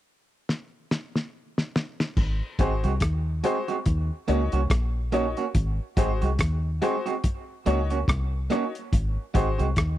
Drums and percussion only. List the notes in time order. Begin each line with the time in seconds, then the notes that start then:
0.49 snare
0.91 snare
1.16 snare
1.58 snare
1.76 snare
2.00 snare
2.17 kick, crash
2.59 kick, closed hi-hat
2.84 closed hi-hat
3.00 kick, cross-stick, closed hi-hat
3.44 closed hi-hat
3.68 closed hi-hat
3.86 kick, closed hi-hat
4.28 closed hi-hat
4.52 closed hi-hat
4.70 kick, cross-stick, closed hi-hat
5.12 closed hi-hat
5.37 closed hi-hat
5.55 kick, closed hi-hat
5.97 kick, closed hi-hat
6.22 closed hi-hat
6.39 kick, cross-stick, closed hi-hat
6.82 closed hi-hat
7.06 closed hi-hat
7.24 kick, closed hi-hat
7.66 closed hi-hat
7.90 closed hi-hat
8.08 kick, cross-stick, closed hi-hat
8.50 cross-stick, closed hi-hat
8.75 closed hi-hat
8.93 kick, closed hi-hat
9.35 kick, closed hi-hat
9.59 closed hi-hat
9.76 kick, cross-stick, closed hi-hat